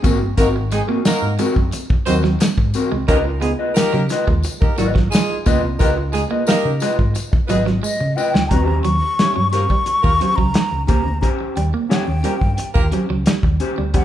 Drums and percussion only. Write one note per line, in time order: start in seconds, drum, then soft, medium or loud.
0.04 kick loud
0.04 closed hi-hat medium
0.04 tambourine medium
0.37 kick medium
0.37 closed hi-hat medium
0.37 tambourine soft
0.71 closed hi-hat medium
0.71 tambourine soft
1.05 snare loud
1.05 closed hi-hat medium
1.05 tambourine loud
1.39 closed hi-hat medium
1.39 tambourine medium
1.56 kick medium
1.72 closed hi-hat loud
1.72 tambourine medium
1.90 kick loud
2.06 closed hi-hat medium
2.06 tambourine medium
2.24 snare soft
2.40 snare loud
2.40 closed hi-hat loud
2.40 tambourine loud
2.58 kick medium
2.74 closed hi-hat medium
2.74 tambourine medium
3.08 kick loud
3.08 closed hi-hat medium
3.42 closed hi-hat medium
3.76 snare medium
3.76 closed hi-hat loud
3.76 tambourine loud
4.09 snare soft
4.09 closed hi-hat loud
4.09 tambourine medium
4.28 kick medium
4.43 closed hi-hat medium
4.43 tambourine medium
4.62 kick loud
4.78 closed hi-hat medium
4.78 tambourine medium
4.96 kick medium
4.96 snare soft
5.12 snare loud
5.12 closed hi-hat medium
5.12 tambourine loud
5.46 kick loud
5.46 closed hi-hat medium
5.46 tambourine medium
5.79 kick medium
5.79 closed hi-hat medium
5.79 tambourine soft
6.13 closed hi-hat medium
6.13 tambourine soft
6.47 snare loud
6.47 closed hi-hat medium
6.47 tambourine medium
6.80 snare soft
6.80 closed hi-hat loud
6.80 tambourine medium
6.99 kick medium
7.15 closed hi-hat medium
7.15 tambourine medium
7.33 kick loud
7.49 closed hi-hat medium
7.49 tambourine medium
7.67 snare soft
7.84 tambourine loud
8.18 tambourine medium
8.35 snare loud
8.51 kick loud
8.51 closed hi-hat medium
8.84 closed hi-hat medium
9.19 snare loud
9.19 closed hi-hat medium
9.53 snare soft
9.53 closed hi-hat medium
9.70 kick medium
9.86 closed hi-hat medium
10.04 kick loud
10.21 closed hi-hat medium
10.38 kick medium
10.54 snare loud
10.54 closed hi-hat loud
10.88 kick loud
10.88 closed hi-hat medium
11.23 kick medium
11.23 closed hi-hat medium
11.57 closed hi-hat medium
11.91 snare medium
11.91 closed hi-hat medium
12.24 closed hi-hat medium
12.41 kick medium
12.58 closed hi-hat medium
12.75 kick loud
12.92 closed hi-hat medium
13.26 snare loud
13.26 closed hi-hat loud
13.43 kick medium
13.60 closed hi-hat medium
13.94 kick loud
13.94 closed hi-hat medium